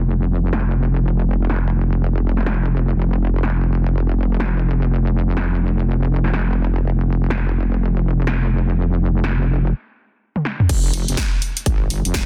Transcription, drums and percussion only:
0.53 snare loud
1.50 snare loud
2.37 snare soft
2.46 snare loud
3.43 snare loud
4.40 snare loud
5.37 snare loud
6.24 snare soft
6.34 snare loud
7.30 snare loud
8.27 snare loud
9.24 snare loud
10.36 high tom soft
10.45 snare medium
10.60 mid tom medium
10.69 kick loud
10.69 closed hi-hat medium
10.69 crash loud
10.94 open hi-hat loud
11.08 closed hi-hat medium
11.17 kick loud
11.17 snare loud
11.17 closed hi-hat medium
11.42 open hi-hat medium
11.57 closed hi-hat medium
11.66 kick loud
11.66 closed hi-hat medium
11.90 open hi-hat loud
12.05 closed hi-hat medium
12.14 kick loud
12.14 snare loud
12.14 closed hi-hat medium

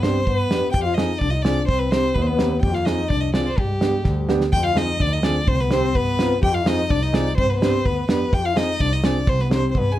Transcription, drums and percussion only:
0.03 snare medium
0.27 kick medium
0.51 snare medium
0.74 kick medium
0.98 snare loud
1.21 kick medium
1.45 snare medium
1.69 kick medium
1.92 snare medium
2.16 kick medium
2.39 snare medium
2.63 kick medium
2.75 snare soft
2.86 snare medium
3.10 kick medium
3.34 snare medium
3.58 kick medium
3.81 snare medium
4.05 kick medium
4.05 snare soft
4.29 snare medium
4.41 snare medium
4.53 kick medium
4.77 snare medium
5.00 kick medium
5.23 snare loud
5.48 kick loud
5.59 snare soft
5.71 snare medium
5.95 kick medium
6.19 snare medium
6.43 kick medium
6.66 snare loud
6.90 kick medium
7.14 snare loud
7.38 kick medium
7.62 snare loud
7.86 kick medium
8.09 snare medium
8.33 kick medium
8.57 snare loud
8.80 kick medium
9.04 snare loud
9.27 kick loud
9.39 snare soft
9.51 snare loud
9.75 kick medium

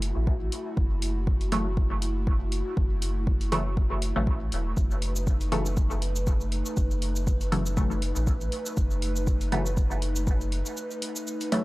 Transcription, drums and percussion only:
0.02 open hi-hat medium
0.27 kick loud
0.52 open hi-hat medium
0.77 kick loud
1.02 open hi-hat medium
1.27 kick loud
1.41 open hi-hat soft
1.52 open hi-hat medium
1.77 kick loud
2.02 open hi-hat medium
2.27 kick loud
2.52 open hi-hat medium
2.77 kick loud
3.02 open hi-hat medium
3.27 kick loud
3.41 open hi-hat soft
3.52 open hi-hat medium
3.77 kick loud
4.02 open hi-hat medium
4.27 kick loud
4.52 open hi-hat medium
4.77 kick loud
4.77 cabasa soft
4.91 cabasa soft
5.02 open hi-hat medium
5.16 cabasa medium
5.27 kick loud
5.27 cabasa soft
5.41 open hi-hat soft
5.41 cabasa soft
5.52 open hi-hat medium
5.66 cabasa medium
5.77 kick loud
5.77 cabasa soft
5.91 cabasa soft
6.02 open hi-hat medium
6.16 cabasa medium
6.27 kick loud
6.27 cabasa soft
6.41 cabasa soft
6.52 open hi-hat medium
6.66 cabasa medium
6.77 kick loud
6.77 cabasa soft
6.91 cabasa soft
7.02 open hi-hat medium
7.16 cabasa medium
7.27 kick loud
7.27 cabasa soft
7.41 open hi-hat soft
7.41 cabasa soft
7.52 open hi-hat medium
7.66 cabasa medium
7.77 kick loud
7.77 cabasa soft
7.91 cabasa soft
8.02 open hi-hat medium
8.16 cabasa medium
8.27 kick loud
8.27 cabasa soft
8.41 cabasa soft
8.52 open hi-hat medium
8.66 cabasa medium
8.77 kick loud
8.77 cabasa soft
8.91 cabasa soft
9.02 open hi-hat medium
9.16 cabasa medium
9.27 kick loud
9.27 cabasa soft
9.41 open hi-hat soft
9.41 cabasa soft
9.52 open hi-hat medium
9.66 cabasa medium
9.77 kick loud
9.77 cabasa soft
9.91 cabasa soft
10.02 open hi-hat medium
10.16 cabasa medium
10.27 kick loud
10.27 cabasa soft
10.41 cabasa soft
10.52 open hi-hat medium
10.66 cabasa medium
10.77 cabasa soft
10.91 cabasa soft
11.02 open hi-hat medium
11.16 cabasa medium
11.27 cabasa medium
11.41 open hi-hat soft
11.41 cabasa soft
11.52 open hi-hat medium

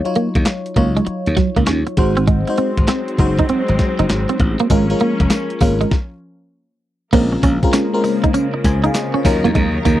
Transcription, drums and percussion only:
0.05 closed hi-hat medium
0.15 closed hi-hat medium
0.35 kick loud
0.35 closed hi-hat medium
0.46 snare loud
0.46 clap loud
0.46 closed hi-hat medium
0.66 closed hi-hat medium
0.76 kick loud
0.76 closed hi-hat medium
0.97 closed hi-hat medium
1.07 closed hi-hat medium
1.26 closed hi-hat medium
1.37 kick medium
1.37 snare medium
1.37 closed hi-hat medium
1.56 kick medium
1.56 closed hi-hat soft
1.67 snare loud
1.67 clap medium
1.67 closed hi-hat medium
1.87 closed hi-hat medium
1.97 kick medium
1.97 closed hi-hat medium
2.17 closed hi-hat medium
2.27 kick loud
2.27 closed hi-hat medium
2.47 closed hi-hat soft
2.58 closed hi-hat medium
2.77 kick loud
2.77 closed hi-hat medium
2.88 snare loud
2.88 clap medium
2.88 closed hi-hat medium
3.08 closed hi-hat medium
3.18 kick medium
3.18 closed hi-hat medium
3.39 kick medium
3.39 closed hi-hat medium
3.49 closed hi-hat medium
3.68 closed hi-hat medium
3.79 kick medium
3.79 snare medium
3.79 closed hi-hat medium
3.99 closed hi-hat medium
4.10 snare loud
4.10 clap medium
4.10 closed hi-hat medium
4.29 closed hi-hat medium
4.40 kick medium
4.40 closed hi-hat medium
4.59 closed hi-hat medium
4.70 kick loud
4.70 closed hi-hat medium
4.70 tambourine medium
4.90 closed hi-hat medium
5.00 closed hi-hat medium
5.20 kick loud
5.20 closed hi-hat medium
5.30 snare loud
5.30 clap loud
5.30 closed hi-hat medium
5.30 tambourine medium
5.50 closed hi-hat medium
5.60 kick loud
5.60 open hi-hat medium
5.60 tambourine medium
5.81 closed hi-hat medium
5.91 kick loud
5.91 snare medium
7.13 kick loud
7.13 closed hi-hat medium
7.13 crash medium
7.43 kick medium
7.43 closed hi-hat medium
7.43 tambourine medium
7.63 kick loud
7.63 closed hi-hat medium
7.73 snare loud
7.73 clap loud
7.73 closed hi-hat medium
7.73 tambourine medium
8.04 open hi-hat medium
8.04 tambourine medium
8.24 kick medium
8.24 closed hi-hat medium
8.34 closed hi-hat medium
8.34 tambourine medium
8.64 kick medium
8.64 snare medium
8.64 closed hi-hat medium
8.64 tambourine medium
8.84 closed hi-hat medium
8.95 snare loud
8.95 clap medium
8.95 closed hi-hat medium
8.95 tambourine loud
9.25 kick medium
9.25 open hi-hat medium
9.25 tambourine medium
9.45 closed hi-hat medium
9.55 kick loud
9.55 closed hi-hat medium
9.85 kick medium
9.85 closed hi-hat medium
9.85 tambourine medium

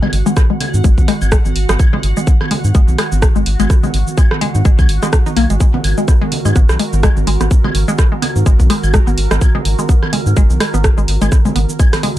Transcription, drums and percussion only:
0.03 high conga medium
0.03 low conga medium
0.03 claves medium
0.13 open hi-hat medium
0.26 high conga medium
0.26 cabasa soft
0.37 kick loud
0.37 cross-stick medium
0.37 cabasa medium
0.50 high conga soft
0.60 open hi-hat medium
0.60 low conga medium
0.60 claves medium
0.74 high conga medium
0.74 cabasa soft
0.84 kick loud
0.84 cabasa medium
0.98 kick medium
0.98 high conga medium
0.98 cabasa soft
1.08 cross-stick soft
1.08 open hi-hat medium
1.22 high conga soft
1.22 cabasa soft
1.22 claves medium
1.32 kick loud
1.32 cross-stick loud
1.32 cabasa medium
1.45 high conga medium
1.45 cabasa soft
1.56 open hi-hat medium
1.69 cross-stick medium
1.69 closed hi-hat soft
1.69 high conga medium
1.69 cabasa soft
1.79 kick loud
1.79 cabasa medium
1.79 claves medium
1.93 high conga soft
1.93 low conga medium
2.03 open hi-hat medium
2.17 high conga medium
2.17 cabasa soft
2.27 kick loud
2.27 cabasa medium
2.41 cross-stick soft
2.41 high conga medium
2.41 claves medium
2.51 open hi-hat medium
2.51 low conga medium
2.64 high conga soft
2.64 cabasa soft
2.75 kick loud
2.75 cabasa medium
2.88 high conga medium
2.88 cabasa soft
2.98 cross-stick medium
2.98 open hi-hat medium
2.98 claves medium
3.12 high conga medium
3.12 cabasa soft
3.22 kick loud
3.22 cross-stick loud
3.22 cabasa soft
3.36 high conga soft
3.36 cabasa soft
3.46 open hi-hat medium
3.60 closed hi-hat soft
3.60 high conga medium
3.60 cabasa soft
3.60 claves medium
3.70 kick loud
3.70 cross-stick soft
3.70 cabasa medium
3.83 high conga medium
3.83 low conga medium
3.83 cabasa soft
3.94 open hi-hat medium
4.07 high conga soft
4.07 cabasa soft
4.18 kick loud
4.18 cabasa soft
4.18 claves medium
4.31 cross-stick medium
4.31 high conga medium
4.41 open hi-hat medium
4.41 low conga medium
4.55 high conga medium
4.55 cabasa soft
4.65 kick loud
4.65 cabasa medium
4.79 kick medium
4.79 high conga soft
4.79 cabasa soft
4.79 claves medium
4.89 open hi-hat medium
5.03 cross-stick soft
5.03 high conga medium
5.03 cabasa soft
5.13 kick loud
5.13 cross-stick loud
5.13 cabasa soft
5.26 high conga medium
5.26 cabasa soft
5.37 open hi-hat medium
5.37 claves medium
5.50 closed hi-hat soft
5.50 high conga soft
5.50 cabasa soft
5.60 kick loud
5.60 cabasa medium
5.74 high conga medium
5.74 low conga medium
5.84 open hi-hat medium
5.84 claves medium
5.98 high conga soft
5.98 cabasa soft
6.08 kick loud
6.08 cross-stick soft
6.08 cabasa medium
6.22 high conga medium
6.32 open hi-hat medium
6.32 low conga medium
6.45 high conga medium
6.45 cabasa soft
6.45 claves medium
6.56 kick loud
6.56 cabasa soft
6.69 cross-stick medium
6.69 high conga soft
6.69 cabasa soft
6.79 open hi-hat medium
6.93 high conga medium
6.93 cabasa soft
7.03 kick loud
7.03 cross-stick loud
7.03 cabasa soft
7.03 claves medium
7.17 high conga medium
7.17 cabasa soft
7.27 open hi-hat medium
7.41 cross-stick soft
7.41 closed hi-hat soft
7.41 high conga soft
7.41 cabasa soft
7.51 kick loud
7.51 cabasa medium
7.64 high conga medium
7.64 low conga medium
7.64 claves medium
7.75 open hi-hat medium
7.88 high conga medium
7.88 cabasa soft
7.99 kick loud
7.99 cross-stick medium
7.99 cabasa soft
8.12 high conga soft
8.22 open hi-hat medium
8.22 low conga medium
8.22 claves medium
8.36 high conga medium
8.36 cabasa soft
8.46 kick loud
8.46 cabasa medium
8.60 kick medium
8.60 high conga medium
8.60 cabasa soft
8.70 cross-stick soft
8.70 open hi-hat medium
8.84 high conga soft
8.84 cabasa soft
8.84 claves medium
8.94 kick loud
8.94 cross-stick loud
8.94 cabasa medium
9.07 high conga medium
9.07 cabasa soft
9.18 open hi-hat medium
9.31 cross-stick medium
9.31 closed hi-hat soft
9.31 high conga medium
9.31 cabasa soft
9.41 kick loud
9.41 cabasa medium
9.41 claves medium
9.55 high conga soft
9.55 low conga medium
9.65 open hi-hat medium
9.79 high conga medium
9.79 cabasa soft
9.89 kick loud
9.89 cabasa medium
10.03 cross-stick soft
10.03 high conga medium
10.03 claves medium
10.13 open hi-hat medium
10.13 low conga medium
10.26 high conga soft
10.26 cabasa soft
10.37 kick loud
10.37 cabasa medium
10.50 high conga medium
10.50 cabasa soft
10.60 cross-stick medium
10.60 open hi-hat medium
10.60 claves medium
10.74 high conga medium
10.74 cabasa soft
10.84 kick loud
10.84 cross-stick loud
10.84 cabasa medium
10.98 high conga soft
10.98 cabasa soft
11.08 open hi-hat medium
11.22 closed hi-hat soft
11.22 high conga medium
11.22 cabasa soft
11.22 claves medium
11.32 kick loud
11.32 cross-stick soft
11.32 cabasa medium
11.45 high conga medium
11.45 low conga medium
11.45 cabasa soft
11.56 open hi-hat medium
11.69 high conga soft
11.69 cabasa soft
11.79 kick loud
11.79 cabasa medium
11.79 claves medium
11.93 cross-stick medium
11.93 open hi-hat soft
11.93 high conga medium
11.93 cabasa soft
12.03 open hi-hat medium
12.03 low conga medium

